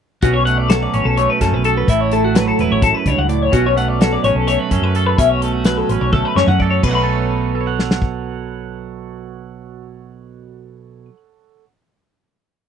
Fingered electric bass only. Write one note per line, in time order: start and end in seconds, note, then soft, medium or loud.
0.23 0.86 B1 medium
0.94 1.04 A1 medium
1.05 1.26 B1 medium
1.41 1.53 F#2 medium
1.52 1.83 B1 medium
1.87 2.51 A1 medium
2.59 2.69 E1 medium
2.71 2.92 A1 medium
3.06 3.16 C#2 medium
3.18 3.49 C#2 medium
3.53 4.16 B1 medium
4.24 4.34 A1 medium
4.35 4.56 B1 medium
4.71 4.81 F#2 medium
4.82 5.14 F#2 medium
5.18 5.82 B1 medium
5.89 6.00 A1 medium
6.01 6.22 B1 medium
6.36 6.46 F#2 medium
6.47 6.79 F#2 medium
6.83 11.05 B1 medium